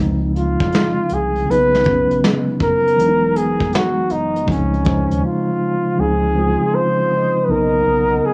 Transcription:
Already playing: C#3 F3
0.00 C#2 G#3 C4 D#4
0.36 F4, closed hi-hat
0.60 kick, closed hi-hat
0.72 snare, closed hi-hat
1.09 C2, closed hi-hat
1.14 G#4
1.35 closed hi-hat
1.46 B1 C#3 F#3 A#3
1.50 B3 D#4 B4, closed hi-hat
1.75 snare
1.84 C#3 F#3, kick, closed hi-hat
1.88 B3 C#4
2.10 A#1, closed hi-hat
2.24 snare, closed hi-hat
2.60 F#1 A#4, kick, closed hi-hat
2.87 closed hi-hat
2.96 E1 E3 F#3 G#3 B3, closed hi-hat
3.01 D4
3.08 D#4
3.36 G#4, closed hi-hat
3.60 kick, closed hi-hat
3.73 F#4, snare, closed hi-hat
4.10 F#1 D#4, closed hi-hat
4.36 closed hi-hat
4.45 C#2 C#3 F3 G#3 C4, kick
4.50 C#4 D#4, closed hi-hat
4.74 closed hi-hat
4.83 C#3 F3 G#3 C5, kick, closed hi-hat
4.88 D#4
5.10 D#2, closed hi-hat
5.25 F4
5.95 C#2 C#3 F3 G#3 D#5 F5 C6 D#6
5.99 C4 D#4 G#4
6.34 C#3 F3 G#3
6.38 C4 F4
6.75 C5
7.44 B1 C#3 F#3 A#3 B4
7.49 B3 D#4 A#4 F#5 A#5
7.85 B1
8.26 G#4

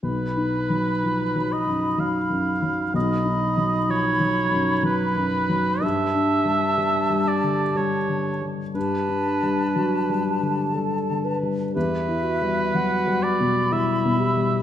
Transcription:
0.03 B1 D#4 B4 B5
0.37 D#4
0.70 F#3
1.03 F3
1.36 F#3
1.52 D#5
1.67 F#2
1.98 F#3 F5
2.30 F#2
2.62 F#3
2.94 B1 D#4 D#5 B5
3.25 D#4
3.57 F#3
3.89 F3 C#5
4.20 F#3
4.52 F#2
4.83 F#3 B4
5.16 F#2
5.49 F#3
5.81 G2 G4 E5 A5
6.14 D4
6.45 G3
6.78 G3
7.10 G3
7.28 D5
7.43 D3
7.75 G3 C#5
8.08 D3
8.42 G3
8.74 G2 G4 B4 A5
9.09 D4
9.43 G3
9.75 F#3 F#4
10.09 G3
10.24 G4
10.41 D3
10.73 G3 A4
11.10 D3
11.24 B4
11.43 G3
11.74 E2 G4 B4 E5
12.08 E4
12.23 F#4
12.42 G3
12.74 F#3 F#5
13.07 G3
13.23 D5 B5
13.40 B2
13.72 G3 E4 E5
14.05 B2
14.19 G4
14.37 G3

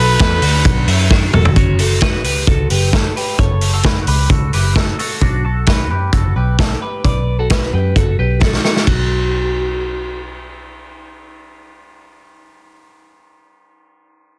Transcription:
Already playing: B1 A4 B4
0.00 F#4
0.19 E2 F#4 A4, kick, snare, ride
0.42 D2 D4 F#4, open hi-hat
0.65 B1, kick, hi-hat pedal, ride
0.87 F#2 C#4 E4, open hi-hat
1.11 D4 F#4, kick, snare
1.33 E1 F#4 A4, mid tom
1.45 floor tom
1.56 F#1 C#4 F#4, kick, closed hi-hat
1.79 F#4 A4, open hi-hat
2.01 F#4 B4, kick, snare, closed hi-hat
2.24 C#2 G4 B4, open hi-hat
2.47 C#2 F#4 A4, kick, closed hi-hat
2.70 F#1 G4 B4, open hi-hat
2.93 F#4 A4, kick, snare, closed hi-hat
3.16 G4 B4, open hi-hat
3.39 F#1 A4 C#5, kick, closed hi-hat
3.61 open hi-hat
3.74 F#4 A4
3.83 F#4 B4, kick, snare, closed hi-hat
4.07 C#2 G4 B4, open hi-hat
4.30 C#2 F#4 A4, kick, closed hi-hat
4.53 F#1 G4 B4, open hi-hat
4.76 F#4 A4, kick, snare, closed hi-hat
4.99 F#4 A4, open hi-hat
5.21 B1 D4 F#4, kick, closed hi-hat
5.45 F#4 A4
5.66 F#4 B4, kick, snare, closed hi-hat
5.90 F#2 G4 B4
6.12 F#1 F#4 A4, kick, closed hi-hat
6.36 B1 G4 B4
6.59 F#4 A4, kick, snare, closed hi-hat
6.82 G4 B4
7.04 B1 B4 D5, kick, closed hi-hat
7.39 F#4 A4
7.50 F#4 B4, kick, snare, closed hi-hat
7.73 F#2 G4 B4
7.96 F#1 F#4 A4, kick, closed hi-hat
8.19 B1 G4 B4
8.41 F#4 A4, kick, snare
8.53 snare
8.64 F#4 A4, snare
8.76 snare
8.87 B1 F#4, kick, ride

